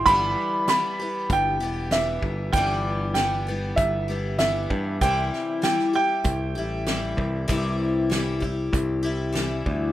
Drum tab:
HH |x---x---x---x---|x---x---x---x---|x---x---x---x---|x---x---x---x---|
SD |----o-------o---|----o-------o---|--o-oo------o---|----o-------o---|
BD |o-------o-----o-|o-------o-----o-|o-------o-----o-|o-----o-o-----o-|